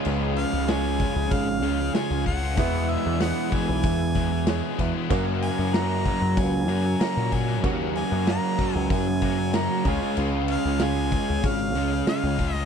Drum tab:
CC |x-x-x-x-x-x-x-x-|x-x-x-x-x-x-x-x-|x-x-x-x-x-x-x-x-|x-x-x-x-x-x-x-x-|
SD |----o-------o--o|----o-------o---|----o-------o--o|----o-------o--o|
BD |------o-o-----o-|o-----o-o-o---o-|o-----o-o-----o-|o-----o-o-o---o-|

CC |x-x-x-x-x-x-x-x-|
SD |----o-------o--o|
BD |------o-o-----o-|